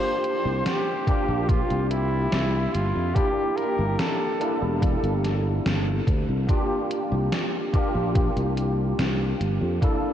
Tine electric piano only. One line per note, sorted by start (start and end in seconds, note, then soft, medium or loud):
0.00 1.02 A#3 medium
0.00 1.03 D4 medium
0.00 1.03 F4 medium
0.00 1.04 G4 medium
1.07 1.29 A#3 medium
1.07 1.29 D4 medium
1.07 1.30 F4 medium
1.07 1.30 G4 medium
3.14 4.35 A#3 medium
3.14 4.36 D4 medium
3.14 4.36 E4 medium
3.14 4.37 G4 medium
4.40 4.62 A#3 medium
4.40 4.62 D4 medium
4.40 4.63 E4 medium
4.40 4.63 A4 medium
6.47 7.68 A#3 medium
6.47 7.69 D4 medium
6.47 7.69 F4 medium
6.47 7.70 G4 medium
7.73 7.96 A#3 medium
7.73 7.96 D4 medium
7.73 7.96 F4 medium
7.73 7.96 G4 medium
9.81 10.13 A#3 medium
9.81 10.13 D4 medium
9.81 10.13 E4 medium
9.81 10.13 A4 medium